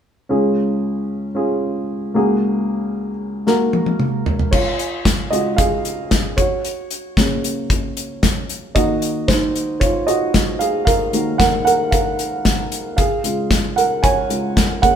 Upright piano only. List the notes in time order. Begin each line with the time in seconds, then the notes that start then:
0.29 C#2 C#3 C#4 F4 G#4
1.35 C#4 F4 G#4
2.14 C#2 C#3 A#3 F#4 G#4
3.47 A#3 F#4 A#4
4.51 F4 C#5
5.31 C#3 G#3 F4 F#4 D#5
5.56 G#4 F5
6.37 F#4 C#5
7.17 C#3 A#3 C#4
8.75 D#3 A#3 F#4 D#5
9.28 D#4 C5
9.80 F4 C#5
10.07 F#4 D#5
10.59 G#4 F5
10.85 A#4 F5
11.13 D#3 A#3 F#4
11.38 A#4 F#5
11.65 A#4 F#5
11.91 A#4 F5
12.97 G#4 F5
13.24 C#3 G#3 F4
13.76 A#4 F#5
14.03 C#5 G#5
14.29 C#3 G#3 F4
14.82 C#3 A#3 C#4 A#4 F#5